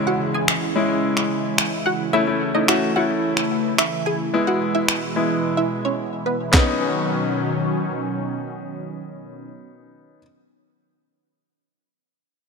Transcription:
0.00 4.30 C#3 medium
0.00 6.50 E3 medium
0.00 0.54 G#3 medium
0.00 2.11 G#3 medium
0.00 0.54 C#4 medium
0.00 0.54 E4 medium
0.00 6.50 E4 medium
0.00 downlifter medium
0.07 0.18 F#4 medium
0.07 0.17 F#5 medium
0.34 0.74 G#4 medium
0.34 0.73 G#5 medium
0.48 finger snap loud
0.76 1.62 G#3 medium
0.76 1.62 C#4 medium
0.76 1.62 E4 medium
1.17 finger snap medium
1.58 finger snap loud
1.86 1.97 F#4 medium
1.86 1.96 F#5 medium
2.13 2.24 A3 medium
2.13 4.31 A3 medium
2.13 2.24 C#4 medium
2.13 2.24 E4 medium
2.13 2.35 E4 medium
2.13 2.34 E5 loud
2.27 2.49 A3 medium
2.27 2.49 C#4 medium
2.27 2.49 E4 medium
2.54 2.65 A3 medium
2.54 2.65 C#4 medium
2.54 2.66 D#4 medium
2.54 2.66 E4 medium
2.54 2.65 D#5 medium
2.68 2.90 A3 medium
2.68 2.90 C#4 medium
2.68 2.90 E4 medium
2.68 2.90 F#4 medium
2.68 2.89 E5 medium
2.68 finger snap loud
2.96 3.82 A3 medium
2.96 3.83 C#4 medium
2.96 3.83 E4 medium
2.96 3.07 F#4 medium
2.96 3.06 F#5 medium
3.37 finger snap medium
3.78 3.89 E4 medium
3.78 3.89 E5 medium
3.78 finger snap loud
4.06 4.17 G#4 medium
4.06 4.17 G#5 medium
4.33 6.52 B2 medium
4.33 4.98 G#3 medium
4.33 6.52 G#3 medium
4.33 4.98 B3 medium
4.33 4.99 E4 medium
4.47 4.58 F#4 medium
4.47 4.58 F#5 medium
4.75 5.14 E4 medium
4.75 5.14 E5 medium
4.88 finger snap loud
5.16 6.03 G#3 medium
5.16 6.03 B3 medium
5.16 6.03 E4 medium
5.57 5.68 E4 medium
5.57 5.68 E5 medium
5.85 5.96 C#4 medium
5.85 5.95 C#5 medium
6.26 6.37 B3 medium
6.26 6.37 B4 medium
6.52 9.50 B2 medium
6.52 9.50 D#3 medium
6.52 9.50 F#3 medium
6.52 10.19 B3 medium
6.52 8.15 B3 medium
6.52 10.20 C#4 medium
6.52 9.50 C#4 medium
6.52 10.21 D#4 medium
6.52 kick loud
6.52 snare medium
6.52 clap medium

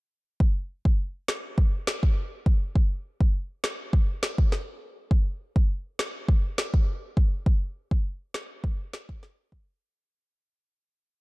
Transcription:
0.40 kick loud
0.85 kick medium
1.28 snare loud
1.58 kick loud
1.87 snare loud
2.03 kick medium
2.46 kick medium
2.75 kick loud
3.21 kick medium
3.64 snare loud
3.93 kick loud
4.23 snare loud
4.38 kick medium
4.52 snare medium
5.11 kick loud
5.56 kick medium
5.99 snare loud
6.28 kick loud
6.58 snare loud
6.74 kick medium
7.17 kick medium
7.46 kick medium
7.91 kick medium
8.34 snare loud
8.64 kick loud
8.93 snare loud
9.09 kick medium
9.23 snare medium
9.52 kick medium

